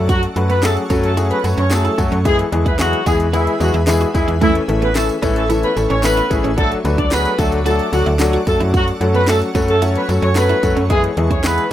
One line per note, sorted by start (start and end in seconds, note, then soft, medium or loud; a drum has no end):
0.00 0.27 F#2 loud
0.00 0.25 F#3 medium
0.00 0.25 A3 medium
0.00 0.25 C#4 medium
0.00 0.25 F#4 medium
0.00 0.25 A4 medium
0.00 2.21 A4 medium
0.00 2.23 C#5 medium
0.00 2.21 F#5 medium
0.00 2.23 C#6 medium
0.09 0.21 F#3 medium
0.09 0.17 F#4 medium
0.09 0.21 F#4 loud
0.09 kick loud
0.09 closed hi-hat medium
0.09 tambourine soft
0.23 closed hi-hat medium
0.36 0.78 F#2 loud
0.36 0.54 F#3 medium
0.36 0.54 A3 medium
0.36 0.54 C#4 medium
0.36 0.55 F#4 medium
0.36 0.55 B4 medium
0.36 muted clean electric guitar stroke soft
0.36 closed hi-hat medium
0.50 0.58 B3 medium
0.50 0.62 B3 medium
0.50 0.61 B4 medium
0.50 closed hi-hat medium
0.62 0.81 F#3 medium
0.62 0.81 A3 medium
0.62 0.75 A3 medium
0.62 0.81 C#4 medium
0.62 0.82 F#4 medium
0.62 0.82 G#4 medium
0.62 0.75 A4 medium
0.62 snare loud
0.62 clap loud
0.62 closed hi-hat medium
0.62 tambourine medium
0.77 closed hi-hat soft
0.90 1.32 F#2 loud
0.90 1.08 F#3 loud
0.90 1.08 A3 loud
0.90 1.08 C#4 medium
0.90 0.98 C#4 medium
0.90 1.09 F#4 medium
0.90 1.09 A4 loud
0.90 kick medium
0.90 closed hi-hat medium
0.90 tambourine medium
1.04 1.16 A3 medium
1.04 1.15 A4 medium
1.04 closed hi-hat medium
1.17 1.35 F#3 medium
1.17 1.35 A3 medium
1.17 1.36 C#4 medium
1.17 1.25 E4 medium
1.17 1.36 F#4 medium
1.17 1.36 G#4 medium
1.17 closed hi-hat loud
1.17 tambourine soft
1.31 1.43 B3 medium
1.31 1.42 B4 medium
1.31 closed hi-hat medium
1.44 1.55 F#2 medium
1.44 1.62 F#3 medium
1.44 1.62 A3 medium
1.44 1.63 C#4 medium
1.44 1.63 F#4 medium
1.44 1.63 B4 medium
1.44 muted clean electric guitar stroke soft
1.44 closed hi-hat medium
1.44 tambourine medium
1.58 1.89 F#2 medium
1.58 1.66 C#4 medium
1.58 1.70 C#4 medium
1.58 1.69 C#5 medium
1.58 closed hi-hat soft
1.70 1.89 F#3 medium
1.70 1.90 A3 medium
1.70 2.10 A3 medium
1.70 1.90 C#4 medium
1.70 1.90 F#4 medium
1.70 1.90 G#4 medium
1.70 2.09 A4 medium
1.70 snare medium
1.70 clap loud
1.70 closed hi-hat medium
1.70 tambourine loud
1.85 1.93 E4 medium
1.85 closed hi-hat soft
1.98 2.09 F#2 loud
1.98 2.16 F#3 loud
1.98 2.16 A3 loud
1.98 2.17 C#4 medium
1.98 2.17 F#4 medium
1.98 2.17 A4 loud
1.98 muted clean electric guitar stroke soft
1.98 kick loud
1.98 closed hi-hat medium
1.98 tambourine soft
2.12 2.43 F#2 loud
2.12 2.20 C#4 medium
2.12 closed hi-hat soft
2.25 2.43 E3 loud
2.25 2.44 G#3 medium
2.25 2.37 G#3 medium
2.25 2.44 B3 medium
2.25 2.44 E4 loud
2.25 2.34 E4 medium
2.25 4.39 G#4 medium
2.25 2.37 G#4 loud
2.25 2.44 G#4 loud
2.25 4.39 B4 medium
2.25 6.54 E5 medium
2.25 4.39 B5 medium
2.25 kick loud
2.25 closed hi-hat medium
2.25 tambourine soft
2.39 closed hi-hat medium
2.52 2.94 E2 loud
2.52 2.71 E3 medium
2.52 2.71 G#3 medium
2.52 2.71 B3 medium
2.52 2.71 E4 medium
2.52 2.71 G#4 medium
2.52 muted clean electric guitar stroke soft
2.52 closed hi-hat medium
2.66 2.78 B3 medium
2.66 2.74 E4 medium
2.66 2.77 B4 medium
2.66 kick loud
2.66 closed hi-hat medium
2.79 2.98 E3 medium
2.79 3.03 F#3 medium
2.79 2.98 G#3 medium
2.79 2.98 B3 medium
2.79 2.98 E4 medium
2.79 3.02 F#4 medium
2.79 2.98 G#4 medium
2.79 snare loud
2.79 clap loud
2.79 closed hi-hat medium
2.79 tambourine medium
2.93 closed hi-hat medium
3.06 3.48 E2 loud
3.06 3.25 E3 loud
3.06 3.25 G#3 loud
3.06 3.18 G#3 medium
3.06 3.25 B3 medium
3.06 3.25 E4 medium
3.06 3.15 F#4 medium
3.06 3.18 G#4 medium
3.06 3.25 G#4 loud
3.06 kick medium
3.06 closed hi-hat medium
3.06 tambourine medium
3.20 closed hi-hat medium
3.33 3.52 E3 medium
3.33 3.57 E3 medium
3.33 3.52 G#3 medium
3.33 3.52 B3 medium
3.33 3.52 E4 medium
3.33 3.56 E4 medium
3.33 3.42 F#4 medium
3.33 3.52 G#4 medium
3.33 closed hi-hat loud
3.33 tambourine soft
3.47 closed hi-hat medium
3.60 3.71 E2 medium
3.60 3.79 E3 medium
3.60 3.72 F#3 medium
3.60 3.79 G#3 medium
3.60 3.79 B3 medium
3.60 3.79 E4 medium
3.60 3.72 F#4 medium
3.60 3.79 G#4 medium
3.60 muted clean electric guitar stroke soft
3.60 closed hi-hat medium
3.60 tambourine medium
3.74 4.05 E2 loud
3.74 3.82 E4 medium
3.74 closed hi-hat soft
3.87 4.06 E3 medium
3.87 4.06 G#3 medium
3.87 4.06 B3 medium
3.87 4.06 E4 medium
3.87 4.06 G#4 loud
3.87 snare medium
3.87 clap loud
3.87 closed hi-hat medium
3.87 tambourine medium
4.01 4.09 F#4 medium
4.01 closed hi-hat medium
4.14 4.25 E2 medium
4.14 4.33 E3 loud
4.14 4.26 E3 medium
4.14 4.33 G#3 medium
4.14 4.33 B3 medium
4.14 4.26 E4 medium
4.14 4.33 E4 medium
4.14 4.33 G#4 loud
4.14 muted clean electric guitar stroke soft
4.14 kick medium
4.14 closed hi-hat medium
4.14 tambourine soft
4.28 4.59 E2 loud
4.28 4.36 E4 medium
4.28 closed hi-hat soft
4.41 4.60 E3 loud
4.41 4.53 E3 medium
4.41 4.60 A3 medium
4.41 4.50 A3 medium
4.41 4.60 C#4 medium
4.41 4.53 E4 loud
4.41 4.60 E4 medium
4.41 10.86 A4 medium
4.41 4.60 A4 loud
4.41 6.55 C#5 medium
4.41 6.55 C#6 loud
4.41 kick loud
4.41 closed hi-hat medium
4.41 tambourine soft
4.55 closed hi-hat medium
4.68 5.10 A1 medium
4.68 4.87 E3 medium
4.68 4.87 A3 medium
4.68 4.87 C#4 medium
4.68 4.87 E4 medium
4.68 4.87 A4 medium
4.68 muted clean electric guitar stroke soft
4.68 closed hi-hat medium
4.82 4.90 B3 medium
4.82 4.94 B3 medium
4.82 4.93 B4 medium
4.82 closed hi-hat medium
4.95 5.14 E3 medium
4.95 5.14 A3 medium
4.95 5.07 A3 medium
4.95 5.14 C#4 medium
4.95 5.14 E4 medium
4.95 5.07 A4 medium
4.95 5.14 A4 medium
4.95 snare loud
4.95 clap loud
4.95 closed hi-hat medium
4.95 tambourine medium
5.09 closed hi-hat medium
5.22 5.65 A1 loud
5.22 5.41 E3 loud
5.22 5.41 A3 medium
5.22 5.41 C#4 loud
5.22 5.31 C#4 medium
5.22 5.41 E4 loud
5.22 5.41 A4 loud
5.22 kick medium
5.22 closed hi-hat medium
5.22 tambourine medium
5.36 5.48 A3 medium
5.36 5.47 A4 medium
5.36 closed hi-hat medium
5.49 5.68 E3 medium
5.49 5.68 A3 medium
5.49 5.68 C#4 medium
5.49 5.68 E4 medium
5.49 5.58 E4 medium
5.49 5.68 A4 medium
5.49 closed hi-hat loud
5.49 tambourine medium
5.63 5.75 B3 medium
5.63 5.74 B4 medium
5.63 closed hi-hat medium
5.76 5.87 A1 medium
5.76 5.95 E3 medium
5.76 5.95 A3 medium
5.76 5.95 C#4 medium
5.76 5.95 E4 medium
5.76 5.95 A4 medium
5.76 muted clean electric guitar stroke soft
5.76 closed hi-hat medium
5.76 tambourine medium
5.90 6.22 A1 loud
5.90 5.98 C#4 medium
5.90 6.02 C#4 medium
5.90 6.01 C#5 medium
5.90 closed hi-hat soft
6.03 6.22 E3 medium
6.03 6.22 A3 medium
6.03 6.42 B3 medium
6.03 6.22 C#4 medium
6.03 6.22 E4 medium
6.03 6.22 A4 medium
6.03 6.42 B4 medium
6.03 snare medium
6.03 clap loud
6.03 closed hi-hat medium
6.03 tambourine loud
6.17 6.25 E4 medium
6.17 closed hi-hat soft
6.30 6.41 A1 medium
6.30 6.49 E3 loud
6.30 6.49 A3 medium
6.30 6.49 C#4 medium
6.30 6.49 E4 medium
6.30 6.49 G#4 loud
6.30 muted clean electric guitar stroke soft
6.30 kick medium
6.30 closed hi-hat medium
6.30 tambourine soft
6.44 6.76 A1 loud
6.44 6.53 C#4 medium
6.44 closed hi-hat medium
6.57 6.76 F#3 loud
6.57 6.76 A3 medium
6.57 6.70 A3 medium
6.57 6.76 D4 loud
6.57 6.66 D4 medium
6.57 6.76 F#4 medium
6.57 6.69 A4 loud
6.57 6.76 A4 loud
6.57 8.45 D5 medium
6.57 10.86 F#5 medium
6.57 8.45 D6 medium
6.57 kick loud
6.57 closed hi-hat medium
6.72 closed hi-hat medium
6.84 7.27 D2 loud
6.84 7.03 F#3 medium
6.84 7.03 A3 medium
6.84 7.03 D4 medium
6.84 7.03 F#4 medium
6.84 7.03 B4 medium
6.84 muted clean electric guitar stroke soft
6.84 closed hi-hat medium
6.84 tambourine soft
6.98 7.07 D4 medium
6.98 7.10 D4 medium
6.98 7.09 D5 medium
6.98 kick medium
6.98 closed hi-hat medium
7.11 7.30 F#3 medium
7.11 7.30 A3 medium
7.11 7.35 B3 medium
7.11 7.30 D4 medium
7.11 7.30 F#4 medium
7.11 7.30 G#4 medium
7.11 7.34 B4 medium
7.11 snare loud
7.11 clap loud
7.11 closed hi-hat medium
7.11 tambourine medium
7.25 closed hi-hat medium
7.38 7.81 D2 loud
7.38 7.57 F#3 loud
7.38 7.57 A3 loud
7.38 7.50 A3 medium
7.38 7.57 D4 loud
7.38 7.47 E4 medium
7.38 7.57 F#4 loud
7.38 7.50 A4 medium
7.38 7.57 A4 loud
7.38 kick medium
7.38 closed hi-hat medium
7.38 tambourine medium
7.52 closed hi-hat medium
7.65 7.84 F#3 medium
7.65 7.84 A3 medium
7.65 7.89 A3 medium
7.65 7.84 D4 medium
7.65 7.74 F#4 medium
7.65 7.84 F#4 medium
7.65 7.89 A4 medium
7.65 7.84 A4 medium
7.65 closed hi-hat loud
7.65 tambourine soft
7.79 closed hi-hat medium
7.93 8.03 D2 medium
7.93 8.11 F#3 medium
7.93 8.05 F#3 medium
7.93 8.11 A3 medium
7.93 8.11 D4 medium
7.93 8.04 F#4 medium
7.93 8.11 F#4 medium
7.93 8.11 A4 medium
7.93 muted clean electric guitar stroke soft
7.93 closed hi-hat medium
7.93 tambourine medium
8.06 8.38 D2 loud
8.06 8.15 E4 medium
8.06 closed hi-hat soft
8.19 8.38 F#3 medium
8.19 8.38 A3 medium
8.19 8.38 D4 medium
8.19 8.38 F#4 medium
8.19 8.38 A4 loud
8.19 snare medium
8.19 clap loud
8.19 closed hi-hat medium
8.19 tambourine loud
8.33 8.42 F#4 medium
8.33 closed hi-hat medium
8.47 8.57 F#2 medium
8.47 8.90 F#3 medium
8.47 8.90 A3 medium
8.47 8.59 A3 medium
8.47 8.90 C#4 medium
8.47 8.90 F#4 medium
8.47 8.58 A4 medium
8.47 8.90 A4 medium
8.47 10.88 C#5 medium
8.47 10.88 C#6 medium
8.47 muted clean electric guitar stroke soft
8.47 kick medium
8.47 closed hi-hat medium
8.47 tambourine soft
8.60 8.92 F#2 loud
8.60 8.69 E4 medium
8.60 closed hi-hat medium
8.74 8.86 F#3 medium
8.74 8.82 F#4 medium
8.74 8.85 F#4 loud
8.74 kick loud
8.74 closed hi-hat medium
8.74 tambourine soft
8.88 closed hi-hat medium
9.01 9.43 F#2 loud
9.01 9.19 F#3 medium
9.01 9.19 A3 medium
9.01 9.19 C#4 medium
9.01 9.19 F#4 medium
9.01 9.19 A4 medium
9.01 muted clean electric guitar stroke soft
9.01 closed hi-hat medium
9.14 9.23 B3 medium
9.14 9.26 B3 medium
9.14 9.26 B4 medium
9.14 closed hi-hat medium
9.27 9.46 F#3 medium
9.27 9.46 A3 medium
9.27 9.40 A3 medium
9.27 9.46 C#4 medium
9.27 9.46 F#4 medium
9.27 9.39 A4 medium
9.27 9.46 A4 medium
9.27 snare loud
9.27 clap loud
9.27 closed hi-hat medium
9.27 tambourine medium
9.42 closed hi-hat medium
9.55 9.97 F#2 loud
9.55 9.73 F#3 loud
9.55 9.73 A3 loud
9.55 9.73 C#4 loud
9.55 9.63 C#4 medium
9.55 9.73 F#4 loud
9.55 9.73 A4 loud
9.55 kick medium
9.55 closed hi-hat medium
9.55 tambourine medium
9.68 9.81 A3 medium
9.68 9.80 A4 medium
9.68 closed hi-hat medium
9.82 10.00 F#3 medium
9.82 10.00 A3 medium
9.82 10.00 C#4 medium
9.82 9.90 E4 medium
9.82 10.00 F#4 medium
9.82 10.00 A4 medium
9.82 closed hi-hat loud
9.82 tambourine medium
9.96 10.07 B3 medium
9.96 10.07 B4 medium
9.96 closed hi-hat medium
10.09 10.19 F#2 medium
10.09 10.27 F#3 medium
10.09 10.27 A3 medium
10.09 10.27 C#4 medium
10.09 10.27 F#4 medium
10.09 10.28 A4 medium
10.09 muted clean electric guitar stroke soft
10.09 closed hi-hat medium
10.09 tambourine medium
10.22 10.54 F#2 loud
10.22 10.31 C#4 medium
10.22 10.35 C#4 medium
10.22 10.34 C#5 medium
10.22 closed hi-hat soft
10.35 10.54 F#3 medium
10.35 10.54 A3 medium
10.35 10.75 B3 medium
10.35 10.54 C#4 medium
10.35 10.54 F#4 medium
10.35 10.55 A4 medium
10.35 10.74 B4 medium
10.35 snare medium
10.35 clap loud
10.35 closed hi-hat medium
10.35 tambourine loud
10.49 10.58 E4 medium
10.49 closed hi-hat soft
10.63 10.74 F#2 medium
10.63 10.81 F#3 loud
10.63 10.81 A3 medium
10.63 10.81 C#4 medium
10.63 10.82 F#4 medium
10.63 10.82 A4 loud
10.63 muted clean electric guitar stroke soft
10.63 kick medium
10.63 closed hi-hat medium
10.63 tambourine soft
10.76 11.08 F#2 loud
10.76 10.85 C#4 medium
10.76 closed hi-hat medium
10.90 11.08 E3 loud
10.90 11.08 G#3 medium
10.90 11.02 G#3 medium
10.90 11.08 B3 medium
10.90 10.98 E4 medium
10.90 11.09 E4 medium
10.90 11.02 G#4 loud
10.90 11.09 G#4 loud
10.90 kick loud
10.90 closed hi-hat medium
11.04 closed hi-hat medium
11.17 11.59 E2 medium
11.17 11.35 E3 medium
11.17 11.35 G#3 medium
11.17 11.36 B3 medium
11.17 11.36 E4 medium
11.17 11.36 G#4 medium
11.17 muted clean electric guitar stroke soft
11.17 closed hi-hat medium
11.31 11.43 C#4 medium
11.31 11.39 E4 medium
11.31 11.42 C#5 medium
11.31 kick medium
11.31 closed hi-hat medium
11.43 11.62 E3 medium
11.43 11.63 G#3 medium
11.43 11.63 B3 medium
11.43 11.68 B3 medium
11.43 11.63 E4 medium
11.43 11.63 G#4 medium
11.43 11.67 B4 medium
11.43 snare loud
11.43 clap loud
11.43 closed hi-hat medium
11.43 tambourine medium
11.58 closed hi-hat medium